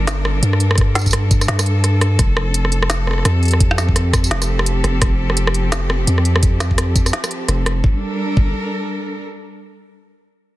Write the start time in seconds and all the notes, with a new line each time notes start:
Already playing: G1 G3 D4 A4 A#4
0.07 cross-stick, snare, closed hi-hat, tambourine
0.25 cross-stick
0.43 G2, closed hi-hat
0.53 cross-stick
0.60 closed hi-hat
0.71 cross-stick
0.75 kick, cross-stick, closed hi-hat
0.81 cross-stick
0.95 cross-stick, snare, closed hi-hat, tambourine
0.99 tambourine
1.01 tambourine
1.06 kick, tambourine
1.11 cross-stick, closed hi-hat, tambourine
1.31 kick, closed hi-hat, tambourine
1.41 cross-stick, tambourine
1.48 G2, snare, closed hi-hat
1.59 cross-stick, tambourine
1.66 closed hi-hat
1.84 cross-stick, closed hi-hat
2.01 cross-stick, closed hi-hat
2.19 F1 F3, kick, cross-stick, closed hi-hat
2.33 C4, cross-stick
2.54 closed hi-hat
2.65 cross-stick
2.72 closed hi-hat
2.83 cross-stick
2.90 snare, closed hi-hat, tambourine
2.99 G4
3.07 cross-stick
3.11 cross-stick
3.13 cross-stick
3.18 cross-stick
3.23 cross-stick
3.25 F2, cross-stick, closed hi-hat
3.43 closed hi-hat
3.45 closed hi-hat
3.48 closed hi-hat
3.51 cross-stick, closed hi-hat
3.60 kick, closed hi-hat
3.71 cross-stick
3.78 snare, tambourine
3.89 kick
3.96 cross-stick, closed hi-hat
4.13 kick, cross-stick, closed hi-hat, tambourine
4.24 tambourine
4.31 F1, snare, closed hi-hat
4.42 cross-stick, tambourine
4.59 cross-stick
4.66 closed hi-hat
4.84 F1, cross-stick, closed hi-hat
5.02 F1, kick, cross-stick, closed hi-hat
5.30 cross-stick
5.37 closed hi-hat
5.47 cross-stick
5.54 closed hi-hat
5.72 cross-stick, snare, closed hi-hat, tambourine
5.90 cross-stick
6.07 F2, closed hi-hat
6.18 cross-stick
6.25 closed hi-hat
6.36 cross-stick
6.43 kick, closed hi-hat
6.60 cross-stick, snare, closed hi-hat, tambourine
6.71 kick
6.78 cross-stick, closed hi-hat
6.96 kick, closed hi-hat, tambourine
7.06 cross-stick, tambourine
7.13 snare, closed hi-hat
7.24 cross-stick, tambourine
7.31 closed hi-hat
7.48 F1, cross-stick, closed hi-hat
7.66 cross-stick, closed hi-hat
7.84 G1 G3, kick
7.90 D4
7.96 A4
8.00 A#4
8.37 G1, kick